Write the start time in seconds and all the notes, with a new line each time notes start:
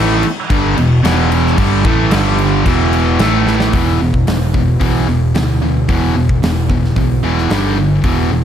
Already playing: A1 A2 E3
0.00 A3
0.23 muted overdriven electric guitar stroke, muted picked electric bass stroke, muted distorted electric guitar stroke, crash
0.50 G1 G2 D3 G3, kick, crash
0.77 E1 E2 B2, crash
1.04 E1 E2 B2 E3, snare, crash
1.32 crash
1.46 snare
1.58 G1 G2 D3 G3, kick, crash
1.85 A1 A2 E3 A3, kick, crash
2.11 G1 G2 D3 G3, snare, crash
2.39 crash
2.66 E1 E2 B2 E3, kick, crash
2.93 crash
3.19 A1 A2 E3 A3, snare, crash
3.47 snare
3.60 snare
3.73 E1 E2 B2 E3, kick, open hi-hat
4.00 E1 E2 B2
4.14 kick
4.27 E1 E2 B2, snare, open hi-hat
4.54 E2 B2, kick
4.80 B1 E2 B2 E3, kick, open hi-hat
5.08 E1 E2 B2
5.34 D2 E2 B2, snare, open hi-hat
5.62 E2 B2
5.89 E1 E2 B2 E3, kick, open hi-hat
6.16 E1 E2 B2
6.29 kick
6.43 E1 E2 B2, snare, open hi-hat
6.70 E2 B2, kick
6.84 snare
6.96 B1 E2 B2, kick, open hi-hat
7.23 E1 E2 B2 E3
7.38 snare
7.50 G1 G2 D3 G3, snare, open hi-hat
7.77 G2 D3
8.04 E1 E2 B2 E3, kick, open hi-hat
8.31 E1 E2 B2